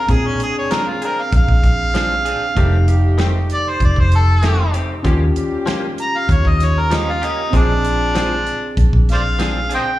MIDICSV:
0, 0, Header, 1, 7, 480
1, 0, Start_track
1, 0, Tempo, 620412
1, 67, Time_signature, 4, 2, 24, 8
1, 7731, End_track
2, 0, Start_track
2, 0, Title_t, "Harmonica"
2, 0, Program_c, 0, 22
2, 0, Note_on_c, 0, 70, 85
2, 90, Note_on_c, 0, 68, 86
2, 102, Note_off_c, 0, 70, 0
2, 213, Note_on_c, 0, 61, 83
2, 225, Note_off_c, 0, 68, 0
2, 311, Note_off_c, 0, 61, 0
2, 331, Note_on_c, 0, 68, 87
2, 435, Note_off_c, 0, 68, 0
2, 452, Note_on_c, 0, 73, 89
2, 566, Note_on_c, 0, 70, 81
2, 578, Note_off_c, 0, 73, 0
2, 686, Note_on_c, 0, 65, 70
2, 698, Note_off_c, 0, 70, 0
2, 787, Note_off_c, 0, 65, 0
2, 814, Note_on_c, 0, 70, 84
2, 941, Note_on_c, 0, 77, 79
2, 952, Note_off_c, 0, 70, 0
2, 1035, Note_off_c, 0, 77, 0
2, 1055, Note_on_c, 0, 77, 106
2, 2450, Note_off_c, 0, 77, 0
2, 2736, Note_on_c, 0, 74, 109
2, 2855, Note_on_c, 0, 72, 91
2, 2867, Note_off_c, 0, 74, 0
2, 2952, Note_off_c, 0, 72, 0
2, 2976, Note_on_c, 0, 74, 83
2, 3078, Note_off_c, 0, 74, 0
2, 3093, Note_on_c, 0, 72, 81
2, 3191, Note_off_c, 0, 72, 0
2, 3215, Note_on_c, 0, 69, 91
2, 3667, Note_off_c, 0, 69, 0
2, 4655, Note_on_c, 0, 82, 95
2, 4779, Note_on_c, 0, 77, 94
2, 4791, Note_off_c, 0, 82, 0
2, 4895, Note_on_c, 0, 73, 88
2, 4906, Note_off_c, 0, 77, 0
2, 5020, Note_on_c, 0, 75, 88
2, 5032, Note_off_c, 0, 73, 0
2, 5140, Note_on_c, 0, 73, 79
2, 5152, Note_off_c, 0, 75, 0
2, 5261, Note_on_c, 0, 70, 80
2, 5272, Note_off_c, 0, 73, 0
2, 5379, Note_on_c, 0, 63, 83
2, 5391, Note_off_c, 0, 70, 0
2, 5505, Note_on_c, 0, 65, 88
2, 5516, Note_off_c, 0, 63, 0
2, 5616, Note_on_c, 0, 63, 84
2, 5627, Note_off_c, 0, 65, 0
2, 5835, Note_off_c, 0, 63, 0
2, 5855, Note_on_c, 0, 62, 110
2, 6773, Note_off_c, 0, 62, 0
2, 7061, Note_on_c, 0, 72, 65
2, 7061, Note_on_c, 0, 74, 65
2, 7061, Note_on_c, 0, 77, 93
2, 7120, Note_off_c, 0, 72, 0
2, 7128, Note_off_c, 0, 74, 0
2, 7510, Note_off_c, 0, 77, 0
2, 7542, Note_on_c, 0, 72, 67
2, 7542, Note_on_c, 0, 75, 67
2, 7542, Note_on_c, 0, 79, 96
2, 7591, Note_off_c, 0, 72, 0
2, 7611, Note_off_c, 0, 75, 0
2, 7731, Note_off_c, 0, 79, 0
2, 7731, End_track
3, 0, Start_track
3, 0, Title_t, "Tine electric piano"
3, 0, Program_c, 1, 4
3, 56, Note_on_c, 1, 60, 68
3, 68, Note_on_c, 1, 62, 66
3, 77, Note_on_c, 1, 68, 72
3, 1951, Note_off_c, 1, 60, 0
3, 1956, Note_off_c, 1, 62, 0
3, 1961, Note_off_c, 1, 68, 0
3, 1973, Note_on_c, 1, 57, 76
3, 1982, Note_on_c, 1, 63, 69
3, 1992, Note_on_c, 1, 67, 77
3, 3869, Note_off_c, 1, 57, 0
3, 3874, Note_off_c, 1, 63, 0
3, 3879, Note_off_c, 1, 67, 0
3, 3891, Note_on_c, 1, 61, 75
3, 3901, Note_on_c, 1, 65, 68
3, 3911, Note_on_c, 1, 67, 85
3, 5788, Note_off_c, 1, 61, 0
3, 5793, Note_off_c, 1, 65, 0
3, 5798, Note_off_c, 1, 67, 0
3, 5807, Note_on_c, 1, 60, 67
3, 5817, Note_on_c, 1, 62, 61
3, 5828, Note_on_c, 1, 68, 74
3, 7706, Note_off_c, 1, 60, 0
3, 7711, Note_off_c, 1, 62, 0
3, 7717, Note_off_c, 1, 68, 0
3, 7731, End_track
4, 0, Start_track
4, 0, Title_t, "Horn section"
4, 0, Program_c, 2, 61
4, 55, Note_on_c, 2, 60, 73
4, 63, Note_on_c, 2, 62, 66
4, 70, Note_on_c, 2, 56, 78
4, 70, Note_on_c, 2, 68, 84
4, 179, Note_off_c, 2, 60, 0
4, 186, Note_off_c, 2, 62, 0
4, 193, Note_off_c, 2, 56, 0
4, 193, Note_off_c, 2, 68, 0
4, 290, Note_on_c, 2, 60, 77
4, 298, Note_on_c, 2, 62, 73
4, 305, Note_on_c, 2, 56, 78
4, 305, Note_on_c, 2, 68, 84
4, 779, Note_off_c, 2, 60, 0
4, 782, Note_off_c, 2, 62, 0
4, 786, Note_off_c, 2, 56, 0
4, 786, Note_off_c, 2, 68, 0
4, 1967, Note_on_c, 2, 57, 93
4, 1975, Note_on_c, 2, 63, 81
4, 1983, Note_on_c, 2, 55, 94
4, 1983, Note_on_c, 2, 67, 102
4, 2090, Note_off_c, 2, 57, 0
4, 2099, Note_off_c, 2, 63, 0
4, 2107, Note_off_c, 2, 55, 0
4, 2107, Note_off_c, 2, 67, 0
4, 2211, Note_on_c, 2, 57, 91
4, 2217, Note_on_c, 2, 63, 87
4, 2228, Note_on_c, 2, 55, 97
4, 2228, Note_on_c, 2, 67, 106
4, 2699, Note_off_c, 2, 57, 0
4, 2702, Note_off_c, 2, 63, 0
4, 2707, Note_off_c, 2, 55, 0
4, 2707, Note_off_c, 2, 67, 0
4, 3898, Note_on_c, 2, 61, 91
4, 3902, Note_on_c, 2, 65, 76
4, 3908, Note_on_c, 2, 55, 91
4, 3908, Note_on_c, 2, 67, 99
4, 4022, Note_off_c, 2, 61, 0
4, 4025, Note_off_c, 2, 65, 0
4, 4031, Note_off_c, 2, 55, 0
4, 4031, Note_off_c, 2, 67, 0
4, 4137, Note_on_c, 2, 61, 85
4, 4145, Note_on_c, 2, 65, 83
4, 4151, Note_on_c, 2, 55, 94
4, 4151, Note_on_c, 2, 67, 103
4, 4622, Note_off_c, 2, 61, 0
4, 4626, Note_off_c, 2, 65, 0
4, 4629, Note_off_c, 2, 55, 0
4, 4629, Note_off_c, 2, 67, 0
4, 5820, Note_on_c, 2, 60, 80
4, 5831, Note_on_c, 2, 62, 65
4, 5842, Note_on_c, 2, 56, 79
4, 5842, Note_on_c, 2, 68, 86
4, 5944, Note_off_c, 2, 60, 0
4, 5953, Note_off_c, 2, 62, 0
4, 5958, Note_off_c, 2, 56, 0
4, 5958, Note_off_c, 2, 68, 0
4, 6060, Note_on_c, 2, 60, 86
4, 6068, Note_on_c, 2, 62, 74
4, 6070, Note_on_c, 2, 53, 84
4, 6070, Note_on_c, 2, 65, 91
4, 6543, Note_off_c, 2, 60, 0
4, 6547, Note_off_c, 2, 62, 0
4, 6548, Note_off_c, 2, 53, 0
4, 6548, Note_off_c, 2, 65, 0
4, 7731, End_track
5, 0, Start_track
5, 0, Title_t, "Clean electric guitar"
5, 0, Program_c, 3, 27
5, 549, Note_on_c, 3, 53, 75
5, 555, Note_on_c, 3, 60, 76
5, 561, Note_on_c, 3, 62, 79
5, 567, Note_on_c, 3, 68, 72
5, 695, Note_off_c, 3, 53, 0
5, 698, Note_off_c, 3, 60, 0
5, 701, Note_off_c, 3, 62, 0
5, 704, Note_off_c, 3, 68, 0
5, 786, Note_on_c, 3, 68, 48
5, 801, Note_on_c, 3, 62, 44
5, 810, Note_on_c, 3, 60, 41
5, 934, Note_off_c, 3, 68, 0
5, 941, Note_off_c, 3, 62, 0
5, 946, Note_off_c, 3, 60, 0
5, 1503, Note_on_c, 3, 53, 77
5, 1509, Note_on_c, 3, 60, 83
5, 1518, Note_on_c, 3, 62, 82
5, 1521, Note_on_c, 3, 68, 78
5, 1652, Note_off_c, 3, 53, 0
5, 1655, Note_off_c, 3, 60, 0
5, 1659, Note_off_c, 3, 62, 0
5, 1661, Note_off_c, 3, 68, 0
5, 1742, Note_on_c, 3, 68, 63
5, 1756, Note_on_c, 3, 62, 52
5, 1768, Note_on_c, 3, 60, 49
5, 1892, Note_off_c, 3, 68, 0
5, 1899, Note_off_c, 3, 62, 0
5, 1904, Note_off_c, 3, 60, 0
5, 1987, Note_on_c, 3, 51, 78
5, 1993, Note_on_c, 3, 57, 81
5, 1998, Note_on_c, 3, 60, 81
5, 2005, Note_on_c, 3, 67, 86
5, 2134, Note_off_c, 3, 51, 0
5, 2137, Note_off_c, 3, 57, 0
5, 2140, Note_off_c, 3, 60, 0
5, 2143, Note_off_c, 3, 67, 0
5, 2460, Note_on_c, 3, 51, 83
5, 2466, Note_on_c, 3, 57, 84
5, 2472, Note_on_c, 3, 60, 97
5, 2478, Note_on_c, 3, 67, 94
5, 2610, Note_off_c, 3, 51, 0
5, 2613, Note_off_c, 3, 57, 0
5, 2617, Note_off_c, 3, 60, 0
5, 2620, Note_off_c, 3, 67, 0
5, 3422, Note_on_c, 3, 51, 69
5, 3430, Note_on_c, 3, 57, 88
5, 3435, Note_on_c, 3, 60, 87
5, 3441, Note_on_c, 3, 67, 89
5, 3572, Note_off_c, 3, 51, 0
5, 3575, Note_off_c, 3, 57, 0
5, 3578, Note_off_c, 3, 60, 0
5, 3581, Note_off_c, 3, 67, 0
5, 3663, Note_on_c, 3, 67, 51
5, 3676, Note_on_c, 3, 60, 49
5, 3688, Note_on_c, 3, 57, 42
5, 3812, Note_off_c, 3, 67, 0
5, 3819, Note_off_c, 3, 60, 0
5, 3824, Note_off_c, 3, 57, 0
5, 3902, Note_on_c, 3, 53, 82
5, 3908, Note_on_c, 3, 58, 85
5, 3914, Note_on_c, 3, 61, 82
5, 3920, Note_on_c, 3, 67, 88
5, 4052, Note_off_c, 3, 53, 0
5, 4055, Note_off_c, 3, 58, 0
5, 4057, Note_off_c, 3, 61, 0
5, 4061, Note_off_c, 3, 67, 0
5, 4378, Note_on_c, 3, 53, 91
5, 4387, Note_on_c, 3, 58, 101
5, 4392, Note_on_c, 3, 61, 92
5, 4397, Note_on_c, 3, 67, 108
5, 4530, Note_off_c, 3, 53, 0
5, 4534, Note_off_c, 3, 58, 0
5, 4536, Note_off_c, 3, 61, 0
5, 4539, Note_off_c, 3, 67, 0
5, 5342, Note_on_c, 3, 53, 72
5, 5350, Note_on_c, 3, 58, 81
5, 5354, Note_on_c, 3, 61, 83
5, 5362, Note_on_c, 3, 67, 97
5, 5491, Note_off_c, 3, 53, 0
5, 5496, Note_off_c, 3, 58, 0
5, 5498, Note_off_c, 3, 61, 0
5, 5501, Note_off_c, 3, 67, 0
5, 5582, Note_on_c, 3, 67, 56
5, 5596, Note_on_c, 3, 61, 54
5, 5608, Note_on_c, 3, 58, 49
5, 5732, Note_off_c, 3, 67, 0
5, 5738, Note_off_c, 3, 61, 0
5, 5745, Note_off_c, 3, 58, 0
5, 5825, Note_on_c, 3, 53, 64
5, 5831, Note_on_c, 3, 60, 73
5, 5836, Note_on_c, 3, 62, 73
5, 5842, Note_on_c, 3, 68, 80
5, 5973, Note_off_c, 3, 53, 0
5, 5976, Note_off_c, 3, 60, 0
5, 5978, Note_off_c, 3, 62, 0
5, 5981, Note_off_c, 3, 68, 0
5, 6304, Note_on_c, 3, 53, 84
5, 6308, Note_on_c, 3, 60, 86
5, 6314, Note_on_c, 3, 62, 85
5, 6322, Note_on_c, 3, 68, 85
5, 6452, Note_off_c, 3, 53, 0
5, 6454, Note_off_c, 3, 60, 0
5, 6458, Note_off_c, 3, 62, 0
5, 6461, Note_off_c, 3, 68, 0
5, 7263, Note_on_c, 3, 53, 76
5, 7268, Note_on_c, 3, 60, 85
5, 7277, Note_on_c, 3, 62, 89
5, 7281, Note_on_c, 3, 68, 97
5, 7412, Note_off_c, 3, 53, 0
5, 7414, Note_off_c, 3, 60, 0
5, 7419, Note_off_c, 3, 62, 0
5, 7421, Note_off_c, 3, 68, 0
5, 7500, Note_on_c, 3, 68, 58
5, 7514, Note_on_c, 3, 62, 46
5, 7527, Note_on_c, 3, 60, 48
5, 7650, Note_off_c, 3, 68, 0
5, 7657, Note_off_c, 3, 62, 0
5, 7664, Note_off_c, 3, 60, 0
5, 7731, End_track
6, 0, Start_track
6, 0, Title_t, "Fingered electric bass"
6, 0, Program_c, 4, 33
6, 64, Note_on_c, 4, 46, 105
6, 249, Note_off_c, 4, 46, 0
6, 1025, Note_on_c, 4, 34, 97
6, 1121, Note_off_c, 4, 34, 0
6, 1150, Note_on_c, 4, 34, 75
6, 1791, Note_off_c, 4, 34, 0
6, 1985, Note_on_c, 4, 29, 107
6, 2722, Note_off_c, 4, 29, 0
6, 2941, Note_on_c, 4, 29, 100
6, 3038, Note_off_c, 4, 29, 0
6, 3064, Note_on_c, 4, 29, 85
6, 3708, Note_off_c, 4, 29, 0
6, 3903, Note_on_c, 4, 39, 108
6, 4089, Note_off_c, 4, 39, 0
6, 4866, Note_on_c, 4, 39, 100
6, 4961, Note_off_c, 4, 39, 0
6, 4989, Note_on_c, 4, 39, 84
6, 5631, Note_off_c, 4, 39, 0
6, 5827, Note_on_c, 4, 34, 109
6, 6563, Note_off_c, 4, 34, 0
6, 6786, Note_on_c, 4, 34, 107
6, 6881, Note_off_c, 4, 34, 0
6, 6909, Note_on_c, 4, 34, 88
6, 7551, Note_off_c, 4, 34, 0
6, 7731, End_track
7, 0, Start_track
7, 0, Title_t, "Drums"
7, 66, Note_on_c, 9, 36, 112
7, 66, Note_on_c, 9, 42, 83
7, 143, Note_off_c, 9, 36, 0
7, 143, Note_off_c, 9, 42, 0
7, 307, Note_on_c, 9, 42, 72
7, 384, Note_off_c, 9, 42, 0
7, 547, Note_on_c, 9, 42, 93
7, 557, Note_on_c, 9, 38, 101
7, 624, Note_off_c, 9, 42, 0
7, 634, Note_off_c, 9, 38, 0
7, 787, Note_on_c, 9, 42, 62
7, 864, Note_off_c, 9, 42, 0
7, 1024, Note_on_c, 9, 42, 88
7, 1025, Note_on_c, 9, 36, 116
7, 1101, Note_off_c, 9, 42, 0
7, 1103, Note_off_c, 9, 36, 0
7, 1149, Note_on_c, 9, 36, 79
7, 1227, Note_off_c, 9, 36, 0
7, 1265, Note_on_c, 9, 36, 84
7, 1265, Note_on_c, 9, 42, 61
7, 1342, Note_off_c, 9, 42, 0
7, 1343, Note_off_c, 9, 36, 0
7, 1506, Note_on_c, 9, 42, 91
7, 1516, Note_on_c, 9, 38, 121
7, 1583, Note_off_c, 9, 42, 0
7, 1593, Note_off_c, 9, 38, 0
7, 1745, Note_on_c, 9, 42, 64
7, 1823, Note_off_c, 9, 42, 0
7, 1985, Note_on_c, 9, 36, 102
7, 1986, Note_on_c, 9, 42, 73
7, 2062, Note_off_c, 9, 36, 0
7, 2064, Note_off_c, 9, 42, 0
7, 2226, Note_on_c, 9, 42, 65
7, 2303, Note_off_c, 9, 42, 0
7, 2463, Note_on_c, 9, 42, 76
7, 2473, Note_on_c, 9, 38, 105
7, 2541, Note_off_c, 9, 42, 0
7, 2551, Note_off_c, 9, 38, 0
7, 2704, Note_on_c, 9, 42, 55
7, 2782, Note_off_c, 9, 42, 0
7, 2942, Note_on_c, 9, 42, 79
7, 2943, Note_on_c, 9, 36, 122
7, 3020, Note_off_c, 9, 36, 0
7, 3020, Note_off_c, 9, 42, 0
7, 3066, Note_on_c, 9, 36, 84
7, 3144, Note_off_c, 9, 36, 0
7, 3184, Note_on_c, 9, 42, 64
7, 3262, Note_off_c, 9, 42, 0
7, 3424, Note_on_c, 9, 42, 90
7, 3434, Note_on_c, 9, 38, 124
7, 3501, Note_off_c, 9, 42, 0
7, 3511, Note_off_c, 9, 38, 0
7, 3666, Note_on_c, 9, 42, 67
7, 3743, Note_off_c, 9, 42, 0
7, 3904, Note_on_c, 9, 36, 109
7, 3904, Note_on_c, 9, 42, 82
7, 3981, Note_off_c, 9, 42, 0
7, 3982, Note_off_c, 9, 36, 0
7, 4146, Note_on_c, 9, 42, 62
7, 4223, Note_off_c, 9, 42, 0
7, 4387, Note_on_c, 9, 42, 87
7, 4397, Note_on_c, 9, 38, 117
7, 4464, Note_off_c, 9, 42, 0
7, 4474, Note_off_c, 9, 38, 0
7, 4626, Note_on_c, 9, 42, 56
7, 4704, Note_off_c, 9, 42, 0
7, 4866, Note_on_c, 9, 36, 127
7, 4866, Note_on_c, 9, 42, 98
7, 4943, Note_off_c, 9, 36, 0
7, 4943, Note_off_c, 9, 42, 0
7, 4990, Note_on_c, 9, 36, 74
7, 5067, Note_off_c, 9, 36, 0
7, 5108, Note_on_c, 9, 42, 68
7, 5118, Note_on_c, 9, 38, 31
7, 5186, Note_off_c, 9, 42, 0
7, 5196, Note_off_c, 9, 38, 0
7, 5348, Note_on_c, 9, 42, 94
7, 5358, Note_on_c, 9, 38, 113
7, 5425, Note_off_c, 9, 42, 0
7, 5435, Note_off_c, 9, 38, 0
7, 5591, Note_on_c, 9, 42, 70
7, 5669, Note_off_c, 9, 42, 0
7, 5827, Note_on_c, 9, 36, 105
7, 5830, Note_on_c, 9, 42, 92
7, 5905, Note_off_c, 9, 36, 0
7, 5907, Note_off_c, 9, 42, 0
7, 6068, Note_on_c, 9, 42, 64
7, 6146, Note_off_c, 9, 42, 0
7, 6308, Note_on_c, 9, 42, 86
7, 6318, Note_on_c, 9, 38, 115
7, 6385, Note_off_c, 9, 42, 0
7, 6395, Note_off_c, 9, 38, 0
7, 6548, Note_on_c, 9, 42, 51
7, 6626, Note_off_c, 9, 42, 0
7, 6786, Note_on_c, 9, 36, 115
7, 6788, Note_on_c, 9, 42, 90
7, 6864, Note_off_c, 9, 36, 0
7, 6865, Note_off_c, 9, 42, 0
7, 6910, Note_on_c, 9, 36, 78
7, 6987, Note_off_c, 9, 36, 0
7, 7030, Note_on_c, 9, 42, 60
7, 7040, Note_on_c, 9, 38, 34
7, 7108, Note_off_c, 9, 42, 0
7, 7118, Note_off_c, 9, 38, 0
7, 7268, Note_on_c, 9, 42, 96
7, 7278, Note_on_c, 9, 38, 124
7, 7345, Note_off_c, 9, 42, 0
7, 7355, Note_off_c, 9, 38, 0
7, 7508, Note_on_c, 9, 42, 61
7, 7585, Note_off_c, 9, 42, 0
7, 7731, End_track
0, 0, End_of_file